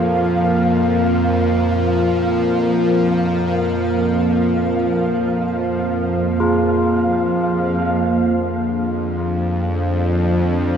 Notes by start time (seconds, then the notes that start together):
Already playing: F2 F3 A#3 F4 A#4 F5
6.40 F4
7.78 F2 F3 D4
8.68 A4
10.63 E5